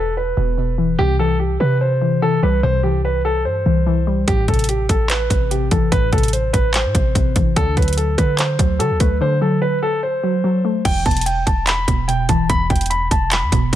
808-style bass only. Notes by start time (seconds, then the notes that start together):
Already playing: E1
0.37 E1
0.99 C2
1.60 C3
2.43 C2
2.63 C2
3.45 G2
3.66 C2
4.28 A1
4.48 A1
4.89 A1
5.30 A1
5.71 A1
5.92 A1
6.13 A1
6.54 A1
6.85 A2
6.95 A1
7.15 A1
7.36 A1
7.56 D2
7.77 D2
8.18 D3
8.59 D2
8.80 D3
8.91 D2
9.00 D2
10.85 E1
11.06 E1
11.47 E1
11.88 E1
12.29 E1
12.50 E1
12.70 E1
13.11 E1
13.43 E2
13.52 E1